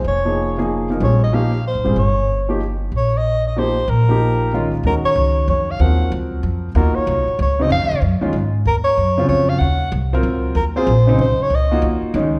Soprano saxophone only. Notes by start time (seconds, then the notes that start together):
0.08 C#5
1.03 C#5
1.24 D#5
1.34 F5
1.67 C5
1.99 C#5
2.97 C#5
3.17 D#5
3.47 D#5
3.58 C5
3.89 A#4
4.86 A#4
5.05 C#5
5.49 C#5
5.71 F5
5.81 F#5
6.76 A#4
6.95 C#5
7.42 C#5
7.62 D#5
7.72 F5
8.67 A#4
8.84 C#5
9.28 C#5
9.49 F5
9.58 F#5
10.56 A#4
10.76 C5
11.20 C5
11.42 C#5
11.55 D#5